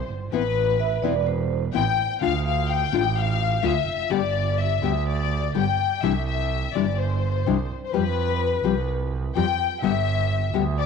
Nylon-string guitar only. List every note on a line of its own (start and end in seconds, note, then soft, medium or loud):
0.32 0.42 E3 medium
0.32 0.42 B3 medium
0.32 0.42 C4 medium
0.32 0.42 E4 medium
1.03 1.13 E3 medium
1.03 1.13 B3 medium
1.03 1.13 C4 medium
1.03 1.13 E4 medium
1.73 1.83 E3 medium
1.73 1.84 B3 medium
1.73 1.83 C4 medium
1.73 1.84 E4 medium
2.21 2.31 D3 medium
2.21 2.31 A3 medium
2.21 2.31 D4 medium
2.21 2.31 F4 medium
2.92 3.02 D3 medium
2.92 3.02 A3 medium
2.92 3.02 D4 medium
2.92 3.02 F4 medium
3.62 3.72 D3 medium
3.62 3.72 A3 medium
3.62 3.72 D4 medium
3.62 3.73 F4 medium
4.10 4.19 D3 medium
4.10 4.20 G3 medium
4.10 4.20 B3 medium
4.10 4.20 G4 medium
4.82 4.91 D3 medium
4.82 4.92 G3 medium
4.82 4.92 B3 medium
4.82 4.92 G4 medium
5.54 5.64 D3 medium
5.54 5.64 G3 medium
5.54 5.64 B3 medium
5.54 5.64 G4 medium
6.03 6.12 C3 medium
6.03 6.12 E3 medium
6.03 6.12 G3 medium
6.03 6.12 D4 medium
6.03 6.13 E4 medium
6.75 6.84 C3 medium
6.75 6.85 E3 medium
6.75 6.85 G3 medium
6.75 6.85 D4 medium
6.75 6.85 E4 medium
7.46 7.55 C3 medium
7.46 7.56 E3 medium
7.46 7.56 G3 medium
7.46 7.56 D4 medium
7.46 7.56 E4 medium
7.93 8.02 F3 medium
7.93 8.03 G3 medium
7.93 8.03 C4 medium
7.93 8.03 G4 medium
8.64 8.73 F3 medium
8.64 8.73 G3 medium
8.64 8.73 C4 medium
8.64 8.74 G4 medium
9.35 9.44 F3 medium
9.35 9.45 G3 medium
9.35 9.45 C4 medium
9.35 9.45 G4 medium
9.82 9.91 D3 medium
9.82 9.92 G3 medium
9.82 9.92 B3 medium
9.82 9.92 G4 medium
10.54 10.63 D3 medium
10.54 10.63 G3 medium
10.54 10.63 B3 medium
10.54 10.63 G4 medium